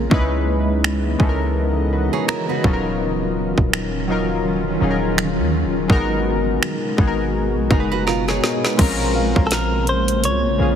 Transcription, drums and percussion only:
0, 0, Header, 1, 2, 480
1, 0, Start_track
1, 0, Tempo, 722892
1, 76, Time_signature, 4, 2, 24, 8
1, 7141, End_track
2, 0, Start_track
2, 0, Title_t, "Drums"
2, 74, Note_on_c, 9, 36, 114
2, 141, Note_off_c, 9, 36, 0
2, 560, Note_on_c, 9, 26, 106
2, 627, Note_off_c, 9, 26, 0
2, 795, Note_on_c, 9, 36, 89
2, 861, Note_off_c, 9, 36, 0
2, 1519, Note_on_c, 9, 26, 110
2, 1585, Note_off_c, 9, 26, 0
2, 1755, Note_on_c, 9, 36, 104
2, 1821, Note_off_c, 9, 36, 0
2, 2375, Note_on_c, 9, 36, 83
2, 2441, Note_off_c, 9, 36, 0
2, 2480, Note_on_c, 9, 26, 106
2, 2546, Note_off_c, 9, 26, 0
2, 3440, Note_on_c, 9, 26, 115
2, 3506, Note_off_c, 9, 26, 0
2, 3915, Note_on_c, 9, 36, 110
2, 3982, Note_off_c, 9, 36, 0
2, 4399, Note_on_c, 9, 26, 108
2, 4466, Note_off_c, 9, 26, 0
2, 4636, Note_on_c, 9, 36, 96
2, 4702, Note_off_c, 9, 36, 0
2, 5117, Note_on_c, 9, 36, 104
2, 5183, Note_off_c, 9, 36, 0
2, 5362, Note_on_c, 9, 38, 55
2, 5428, Note_off_c, 9, 38, 0
2, 5501, Note_on_c, 9, 38, 55
2, 5568, Note_off_c, 9, 38, 0
2, 5602, Note_on_c, 9, 38, 79
2, 5668, Note_off_c, 9, 38, 0
2, 5741, Note_on_c, 9, 38, 84
2, 5807, Note_off_c, 9, 38, 0
2, 5836, Note_on_c, 9, 36, 115
2, 5836, Note_on_c, 9, 42, 73
2, 5836, Note_on_c, 9, 49, 95
2, 5902, Note_off_c, 9, 36, 0
2, 5902, Note_off_c, 9, 42, 0
2, 5902, Note_off_c, 9, 49, 0
2, 6215, Note_on_c, 9, 36, 85
2, 6282, Note_off_c, 9, 36, 0
2, 6313, Note_on_c, 9, 42, 75
2, 6320, Note_on_c, 9, 38, 106
2, 6379, Note_off_c, 9, 42, 0
2, 6386, Note_off_c, 9, 38, 0
2, 6555, Note_on_c, 9, 42, 46
2, 6621, Note_off_c, 9, 42, 0
2, 6694, Note_on_c, 9, 42, 76
2, 6761, Note_off_c, 9, 42, 0
2, 6797, Note_on_c, 9, 42, 71
2, 6863, Note_off_c, 9, 42, 0
2, 7141, End_track
0, 0, End_of_file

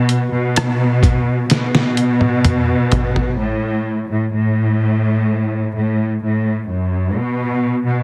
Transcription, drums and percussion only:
0, 0, Header, 1, 2, 480
1, 0, Start_track
1, 0, Tempo, 941915
1, 1731, Time_signature, 4, 2, 24, 8
1, 4093, End_track
2, 0, Start_track
2, 0, Title_t, "Drums"
2, 45, Note_on_c, 9, 42, 68
2, 96, Note_off_c, 9, 42, 0
2, 287, Note_on_c, 9, 42, 90
2, 292, Note_on_c, 9, 37, 107
2, 338, Note_off_c, 9, 42, 0
2, 343, Note_off_c, 9, 37, 0
2, 524, Note_on_c, 9, 36, 80
2, 527, Note_on_c, 9, 42, 66
2, 574, Note_off_c, 9, 36, 0
2, 578, Note_off_c, 9, 42, 0
2, 764, Note_on_c, 9, 42, 80
2, 770, Note_on_c, 9, 38, 46
2, 815, Note_off_c, 9, 42, 0
2, 821, Note_off_c, 9, 38, 0
2, 890, Note_on_c, 9, 38, 49
2, 941, Note_off_c, 9, 38, 0
2, 1005, Note_on_c, 9, 42, 66
2, 1056, Note_off_c, 9, 42, 0
2, 1125, Note_on_c, 9, 48, 57
2, 1176, Note_off_c, 9, 48, 0
2, 1246, Note_on_c, 9, 42, 75
2, 1247, Note_on_c, 9, 47, 71
2, 1297, Note_off_c, 9, 42, 0
2, 1297, Note_off_c, 9, 47, 0
2, 1486, Note_on_c, 9, 42, 48
2, 1488, Note_on_c, 9, 43, 73
2, 1537, Note_off_c, 9, 42, 0
2, 1539, Note_off_c, 9, 43, 0
2, 1611, Note_on_c, 9, 43, 65
2, 1662, Note_off_c, 9, 43, 0
2, 4093, End_track
0, 0, End_of_file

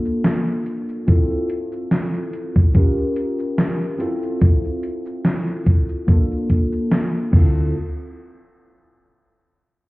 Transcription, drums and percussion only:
0, 0, Header, 1, 2, 480
1, 0, Start_track
1, 0, Tempo, 833333
1, 622, Time_signature, 4, 2, 24, 8
1, 5697, End_track
2, 0, Start_track
2, 0, Title_t, "Drums"
2, 31, Note_on_c, 9, 69, 58
2, 88, Note_off_c, 9, 69, 0
2, 140, Note_on_c, 9, 38, 117
2, 140, Note_on_c, 9, 42, 75
2, 198, Note_off_c, 9, 38, 0
2, 198, Note_off_c, 9, 42, 0
2, 272, Note_on_c, 9, 69, 28
2, 330, Note_off_c, 9, 69, 0
2, 380, Note_on_c, 9, 42, 64
2, 438, Note_off_c, 9, 42, 0
2, 512, Note_on_c, 9, 69, 52
2, 570, Note_off_c, 9, 69, 0
2, 621, Note_on_c, 9, 42, 77
2, 621, Note_on_c, 9, 69, 49
2, 622, Note_on_c, 9, 36, 117
2, 679, Note_off_c, 9, 42, 0
2, 679, Note_off_c, 9, 69, 0
2, 680, Note_off_c, 9, 36, 0
2, 751, Note_on_c, 9, 69, 31
2, 809, Note_off_c, 9, 69, 0
2, 862, Note_on_c, 9, 42, 65
2, 919, Note_off_c, 9, 42, 0
2, 992, Note_on_c, 9, 69, 59
2, 1050, Note_off_c, 9, 69, 0
2, 1102, Note_on_c, 9, 38, 104
2, 1102, Note_on_c, 9, 42, 74
2, 1102, Note_on_c, 9, 69, 44
2, 1159, Note_off_c, 9, 38, 0
2, 1159, Note_off_c, 9, 42, 0
2, 1159, Note_off_c, 9, 69, 0
2, 1235, Note_on_c, 9, 42, 34
2, 1235, Note_on_c, 9, 69, 26
2, 1292, Note_off_c, 9, 42, 0
2, 1292, Note_off_c, 9, 69, 0
2, 1344, Note_on_c, 9, 42, 66
2, 1401, Note_off_c, 9, 42, 0
2, 1473, Note_on_c, 9, 69, 56
2, 1474, Note_on_c, 9, 36, 100
2, 1531, Note_off_c, 9, 69, 0
2, 1532, Note_off_c, 9, 36, 0
2, 1582, Note_on_c, 9, 42, 75
2, 1582, Note_on_c, 9, 69, 47
2, 1583, Note_on_c, 9, 36, 111
2, 1640, Note_off_c, 9, 36, 0
2, 1640, Note_off_c, 9, 42, 0
2, 1640, Note_off_c, 9, 69, 0
2, 1712, Note_on_c, 9, 69, 28
2, 1770, Note_off_c, 9, 69, 0
2, 1822, Note_on_c, 9, 42, 67
2, 1879, Note_off_c, 9, 42, 0
2, 1953, Note_on_c, 9, 69, 60
2, 2010, Note_off_c, 9, 69, 0
2, 2063, Note_on_c, 9, 38, 114
2, 2063, Note_on_c, 9, 42, 77
2, 2063, Note_on_c, 9, 69, 46
2, 2121, Note_off_c, 9, 38, 0
2, 2121, Note_off_c, 9, 42, 0
2, 2121, Note_off_c, 9, 69, 0
2, 2195, Note_on_c, 9, 69, 28
2, 2252, Note_off_c, 9, 69, 0
2, 2304, Note_on_c, 9, 42, 66
2, 2361, Note_off_c, 9, 42, 0
2, 2435, Note_on_c, 9, 69, 56
2, 2493, Note_off_c, 9, 69, 0
2, 2542, Note_on_c, 9, 42, 84
2, 2542, Note_on_c, 9, 69, 50
2, 2543, Note_on_c, 9, 36, 123
2, 2600, Note_off_c, 9, 42, 0
2, 2600, Note_off_c, 9, 69, 0
2, 2601, Note_off_c, 9, 36, 0
2, 2674, Note_on_c, 9, 69, 31
2, 2731, Note_off_c, 9, 69, 0
2, 2783, Note_on_c, 9, 42, 67
2, 2840, Note_off_c, 9, 42, 0
2, 2913, Note_on_c, 9, 69, 59
2, 2971, Note_off_c, 9, 69, 0
2, 3022, Note_on_c, 9, 38, 110
2, 3022, Note_on_c, 9, 42, 73
2, 3022, Note_on_c, 9, 69, 47
2, 3080, Note_off_c, 9, 38, 0
2, 3080, Note_off_c, 9, 42, 0
2, 3080, Note_off_c, 9, 69, 0
2, 3154, Note_on_c, 9, 42, 35
2, 3154, Note_on_c, 9, 69, 28
2, 3211, Note_off_c, 9, 42, 0
2, 3211, Note_off_c, 9, 69, 0
2, 3262, Note_on_c, 9, 42, 66
2, 3263, Note_on_c, 9, 36, 98
2, 3320, Note_off_c, 9, 36, 0
2, 3320, Note_off_c, 9, 42, 0
2, 3392, Note_on_c, 9, 69, 57
2, 3449, Note_off_c, 9, 69, 0
2, 3502, Note_on_c, 9, 36, 113
2, 3502, Note_on_c, 9, 42, 82
2, 3502, Note_on_c, 9, 69, 47
2, 3560, Note_off_c, 9, 36, 0
2, 3560, Note_off_c, 9, 42, 0
2, 3560, Note_off_c, 9, 69, 0
2, 3635, Note_on_c, 9, 69, 29
2, 3692, Note_off_c, 9, 69, 0
2, 3742, Note_on_c, 9, 42, 67
2, 3743, Note_on_c, 9, 36, 59
2, 3800, Note_off_c, 9, 36, 0
2, 3800, Note_off_c, 9, 42, 0
2, 3873, Note_on_c, 9, 69, 58
2, 3931, Note_off_c, 9, 69, 0
2, 3983, Note_on_c, 9, 38, 116
2, 3983, Note_on_c, 9, 42, 83
2, 4041, Note_off_c, 9, 38, 0
2, 4041, Note_off_c, 9, 42, 0
2, 4114, Note_on_c, 9, 69, 28
2, 4172, Note_off_c, 9, 69, 0
2, 4222, Note_on_c, 9, 36, 110
2, 4222, Note_on_c, 9, 49, 88
2, 4279, Note_off_c, 9, 49, 0
2, 4280, Note_off_c, 9, 36, 0
2, 5697, End_track
0, 0, End_of_file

